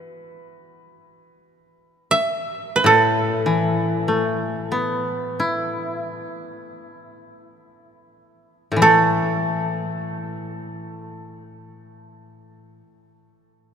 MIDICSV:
0, 0, Header, 1, 3, 480
1, 0, Start_track
1, 0, Tempo, 500000
1, 13190, End_track
2, 0, Start_track
2, 0, Title_t, "Koto"
2, 0, Program_c, 0, 107
2, 2026, Note_on_c, 0, 76, 83
2, 2648, Note_on_c, 0, 71, 59
2, 2748, Note_on_c, 0, 69, 72
2, 3460, Note_off_c, 0, 76, 0
2, 4353, Note_off_c, 0, 71, 0
2, 7126, Note_off_c, 0, 69, 0
2, 8467, Note_on_c, 0, 69, 67
2, 12338, Note_off_c, 0, 69, 0
2, 13190, End_track
3, 0, Start_track
3, 0, Title_t, "Koto"
3, 0, Program_c, 1, 107
3, 0, Note_on_c, 1, 71, 44
3, 552, Note_off_c, 1, 71, 0
3, 2727, Note_on_c, 1, 45, 54
3, 3320, Note_on_c, 1, 52, 41
3, 3917, Note_on_c, 1, 57, 40
3, 4527, Note_on_c, 1, 59, 44
3, 5180, Note_on_c, 1, 64, 39
3, 5829, Note_off_c, 1, 52, 0
3, 5972, Note_off_c, 1, 45, 0
3, 6546, Note_off_c, 1, 57, 0
3, 7307, Note_off_c, 1, 59, 0
3, 8035, Note_off_c, 1, 64, 0
3, 8367, Note_on_c, 1, 45, 44
3, 8414, Note_on_c, 1, 52, 47
3, 8465, Note_on_c, 1, 57, 51
3, 12277, Note_off_c, 1, 45, 0
3, 12323, Note_off_c, 1, 52, 0
3, 12374, Note_off_c, 1, 57, 0
3, 13190, End_track
0, 0, End_of_file